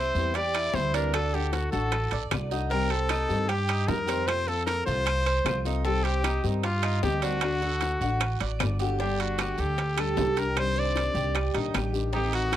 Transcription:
Already playing: nylon-string guitar G3 C4 E4, cuban tres E4, trumpet C5
0.15 upright bass E2, nylon-string guitar E3 G3 C4 E4, short guiro
0.34 cuban tres G4, trumpet D5, muted nylon-string guitar stroke, high bongo, high timbale, long guiro
0.54 cuban tres E4, high timbale, claves
0.74 upright bass D2, nylon-string guitar E3 G3 C4 E4, trumpet C5, high bongo, low bongo, short guiro
0.94 nylon-string guitar E3 G3 C4 E4, cuban tres D4, trumpet A#4, high timbale, short guiro
1.13 nylon-string guitar D3 A3 D4 F#4, trumpet A4, high bongo, high timbale, long guiro, claves
1.34 nylon-string guitar A3 D4 F#4, trumpet G4, cuban tres A4
1.53 trumpet F#4, high bongo, high timbale, short guiro
1.72 upright bass A1, nylon-string guitar A3 D4 F#4, cuban tres F#4, trumpet A4, high bongo, short guiro
1.92 muted nylon-string guitar stroke, high bongo, high timbale, long guiro, claves
2.11 upright bass A#1, cuban tres D5, high bongo, high timbale
2.31 upright bass C2, nylon-string guitar D3 A3 D4 F#4, high bongo, low bongo, high timbale, short guiro, claves
2.51 nylon-string guitar A3 D4 F#4, cuban tres D#4, high bongo, short guiro
2.70 nylon-string guitar C3 D#3 G3 C4 G4, cuban tres C4, trumpet A#4, high bongo, long guiro
2.90 nylon-string guitar G3 C4 G4, trumpet A4, high timbale
3.09 cuban tres D#4, high bongo, high timbale, short guiro, claves
3.29 upright bass G2, nylon-string guitar D#3 G3 C4 G4, short guiro
3.48 trumpet G4, cuban tres G4, muted nylon-string guitar stroke, high bongo, high timbale, long guiro
3.69 cuban tres D#4, high timbale, claves
3.88 upright bass F2, nylon-string guitar D#3 G3 C4 G4, trumpet A#4, high bongo, low bongo, low timbale, short guiro
4.07 nylon-string guitar D#3 G3 C4 G4, cuban tres C4, high timbale, short guiro
4.26 nylon-string guitar C3 F3 A3 C4 F4, trumpet C5, high bongo, high timbale, long guiro, claves
4.47 nylon-string guitar A3 C4 F4, trumpet A4, cuban tres A4
4.66 trumpet A#4, high bongo, high timbale, short guiro
4.86 upright bass C2, nylon-string guitar F3 A3 C4 F4, cuban tres F4, trumpet C5, high bongo, short guiro
5.06 muted nylon-string guitar stroke, high bongo, high timbale, long guiro, claves
5.26 cuban tres C5, high bongo, high timbale
5.45 upright bass C2, nylon-string guitar F3 A3 C4 F4, high bongo, low bongo, high timbale, short guiro, claves
5.65 nylon-string guitar F3 A3 C4 F4, cuban tres D#4, high bongo, short guiro
5.85 nylon-string guitar C3 D#3 G3 C4 G4, cuban tres C4, trumpet A4, high bongo, long guiro
6.04 nylon-string guitar G3 C4 G4, trumpet G4, high timbale
6.24 cuban tres D#4, high bongo, high timbale, short guiro, claves
6.44 upright bass G2, nylon-string guitar D#3 G3 C4 G4, short guiro
6.63 trumpet F4, cuban tres G4, muted nylon-string guitar stroke, high bongo, high timbale, long guiro
6.83 cuban tres D#4, high timbale, claves
7.03 upright bass D2, nylon-string guitar D#3 G3 C4 G4, trumpet G4, high bongo, low bongo, short guiro
7.22 nylon-string guitar D#3 G3 C4 G4, cuban tres D4, trumpet F#4, high timbale, short guiro
7.41 nylon-string guitar D3 A3 D4 F#4, high bongo, high timbale, long guiro, claves
7.62 nylon-string guitar A3 D4, cuban tres A4
7.81 high bongo, high timbale, short guiro
8.01 upright bass A1, nylon-string guitar A3 D4 F#4, cuban tres F#4, high bongo, short guiro
8.20 muted nylon-string guitar stroke, high bongo, high timbale, long guiro, claves
8.41 upright bass A1, cuban tres D5, high bongo, high timbale
8.59 upright bass G1, nylon-string guitar D3 A3 D4 F#4, high bongo, low bongo, high timbale, short guiro, claves
8.79 nylon-string guitar A3 D4 F#4, cuban tres G4, high bongo, short guiro
8.99 nylon-string guitar D3 G3 D4, cuban tres D4, trumpet G4, high bongo, long guiro
9.20 trumpet F#4, high timbale
9.38 cuban tres G4, high bongo, high timbale, short guiro, claves
9.58 upright bass D2, trumpet G4, cuban tres A4, short guiro
9.78 muted nylon-string guitar stroke, high bongo, high timbale, long guiro
9.97 nylon-string guitar G3 D4 G4, cuban tres G4, trumpet A4, high timbale, claves
10.17 upright bass C2, nylon-string guitar D3 G3 D4 G4, high bongo, low bongo, low timbale, short guiro
10.37 nylon-string guitar G3 D4 G4, trumpet A#4, high timbale, short guiro
10.56 nylon-string guitar C3 D#3 G3 D4 G4, trumpet C5, high bongo, high timbale, long guiro, claves
10.76 cuban tres C5, trumpet D5
10.95 high bongo, high timbale, short guiro
11.14 upright bass C2, cuban tres G4, high bongo, short guiro
11.35 muted nylon-string guitar stroke, high bongo, high timbale, long guiro, claves
11.54 upright bass A#1, nylon-string guitar D#3 G3 D4 G4, cuban tres D#4, high bongo, high timbale
11.74 upright bass A1, nylon-string guitar D#3 G3 D4 G4, cuban tres G4, high bongo, low bongo, high timbale, short guiro, claves
11.93 nylon-string guitar D#3 G3 D4 G4, high bongo, short guiro
12.13 nylon-string guitar D#3 A3, cuban tres D#4, trumpet G4, high bongo, long guiro
12.17 nylon-string guitar C4
12.33 trumpet F#4, high timbale
12.52 cuban tres A4, high bongo, high timbale, short guiro, claves

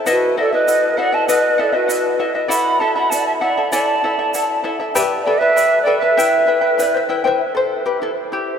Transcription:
0.06 charango E4 B4 D#5 E5 F#5, quena B4, shaker
0.11 pan flute F#4
0.37 charango E4 D#5 E5 F#5, pan flute A4, quena D5
0.53 charango E4 D#5 E5, pan flute B4, quena D#5
0.68 charango E4 D#5 F#5, shaker
0.97 charango E4 D#5 E5 F#5, pan flute D5, quena F#5
1.12 charango E4 D#5 E5, pan flute D#5, quena A5
1.28 charango E4 B4 D#5 F#5, pan flute B4, quena D#5, shaker
1.58 charango E4 D#5 E5 F#5, pan flute A4, quena D5
1.73 charango E4 D#5 E5, pan flute F#4, quena B4
1.88 charango E4 D#5 E5 F#5, shaker
2.19 charango E4 D#5 E5 F#5
2.35 charango E4 D#5 E5
2.48 charango E4 A4 D5 E5 F#5, pan flute F#5, quena B5, shaker
2.80 charango E4 A4 E5 F#5, pan flute E5, quena A5
2.95 charango E4 A4 E5, pan flute F#5, quena B5
3.10 charango E4 A4 E5 F#5, pan flute D5, quena A5, shaker
3.27 pan flute E5, quena A5
3.40 charango E4 A4 E5 F#5, pan flute D5, quena F#5
3.57 charango E4 A4 E5
3.71 charango E4 A4 D5 E5 F#5, pan flute D5, quena A5, shaker
4.04 charango E4 A4 E5 F#5
4.19 charango E4 A4 E5
4.34 charango E4 A4 E5 F#5, shaker
4.64 charango E4 A4 E5 F#5
4.80 charango E4 A4 E5
4.95 charango G4 B4 D5 E5 G5, pan flute G4, quena B4, shaker
5.23 pan flute A4, charango B4 D5 E5 G5, quena D5
5.38 pan flute B4, charango D5 E5, quena E5
5.42 charango B4
5.56 charango B4 D5 E5 G5, shaker
5.82 pan flute A4, quena D5, charango G5
5.87 charango B4 D5 E5
5.98 pan flute B4, quena E5
6.02 charango B4 D5 E5
6.17 charango E4 G4 B4 E5 G5, shaker
6.47 charango E4 B4 E5 G5
6.61 charango E4 B4 G5
6.78 charango E4 B4 E5 G5, shaker
6.82 charango D5
6.94 charango C5 E5
7.09 charango E4 B4 E5 G5
7.24 charango E4 B4 C5 E5 G5
7.55 charango A4 C5
7.86 charango G4 B4
8.02 charango E4 A4
8.32 charango E4 G4

